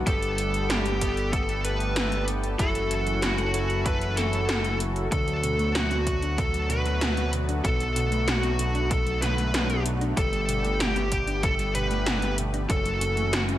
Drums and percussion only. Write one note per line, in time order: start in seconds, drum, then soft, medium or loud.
0.07 kick loud
0.07 closed hi-hat medium
0.23 closed hi-hat soft
0.38 closed hi-hat loud
0.54 closed hi-hat soft
0.70 snare loud
0.70 closed hi-hat medium
0.86 closed hi-hat soft
1.01 kick medium
1.01 closed hi-hat loud
1.17 closed hi-hat soft
1.33 kick loud
1.33 closed hi-hat medium
1.49 closed hi-hat soft
1.65 closed hi-hat medium
1.80 closed hi-hat soft
1.96 snare loud
1.96 closed hi-hat medium
2.12 closed hi-hat soft
2.28 closed hi-hat medium
2.44 closed hi-hat soft
2.59 kick loud
2.59 closed hi-hat medium
2.75 closed hi-hat soft
2.91 closed hi-hat medium
3.07 closed hi-hat soft
3.22 snare loud
3.22 closed hi-hat medium
3.38 closed hi-hat soft
3.54 closed hi-hat medium
3.70 closed hi-hat soft
3.86 kick loud
3.86 closed hi-hat medium
4.01 closed hi-hat soft
4.17 snare medium
4.17 closed hi-hat medium
4.33 closed hi-hat soft
4.49 snare loud
4.49 closed hi-hat medium
4.64 closed hi-hat soft
4.80 closed hi-hat medium
4.96 closed hi-hat soft
5.12 kick loud
5.12 closed hi-hat medium
5.28 closed hi-hat soft
5.43 closed hi-hat medium
5.59 closed hi-hat soft
5.75 snare loud
5.75 closed hi-hat medium
5.91 closed hi-hat soft
6.07 kick medium
6.07 closed hi-hat medium
6.22 closed hi-hat soft
6.38 kick loud
6.38 closed hi-hat medium
6.54 closed hi-hat soft
6.70 closed hi-hat medium
6.86 closed hi-hat soft
7.01 snare loud
7.01 closed hi-hat medium
7.17 closed hi-hat soft
7.33 closed hi-hat medium
7.49 closed hi-hat soft
7.65 kick loud
7.65 closed hi-hat medium
7.80 closed hi-hat soft
7.96 closed hi-hat medium
8.12 closed hi-hat soft
8.28 snare loud
8.28 closed hi-hat medium
8.43 closed hi-hat soft
8.59 closed hi-hat medium
8.75 closed hi-hat soft
8.91 kick loud
8.91 closed hi-hat medium
9.07 closed hi-hat soft
9.22 snare medium
9.22 closed hi-hat medium
9.38 closed hi-hat soft
9.54 snare loud
9.54 closed hi-hat medium
9.70 closed hi-hat soft
9.86 closed hi-hat medium
10.01 closed hi-hat soft
10.17 kick loud
10.17 closed hi-hat medium
10.33 closed hi-hat soft
10.49 closed hi-hat medium
10.65 closed hi-hat soft
10.80 snare loud
10.80 closed hi-hat medium
10.96 closed hi-hat soft
11.12 kick medium
11.12 closed hi-hat loud
11.27 closed hi-hat soft
11.43 kick loud
11.43 closed hi-hat medium
11.59 closed hi-hat soft
11.75 closed hi-hat medium
11.91 closed hi-hat soft
12.06 snare loud
12.06 closed hi-hat medium
12.22 closed hi-hat soft
12.38 closed hi-hat medium
12.54 closed hi-hat soft
12.70 kick loud
12.70 closed hi-hat medium
12.86 closed hi-hat soft
13.01 closed hi-hat medium
13.17 closed hi-hat soft
13.33 snare loud
13.33 closed hi-hat medium
13.49 closed hi-hat soft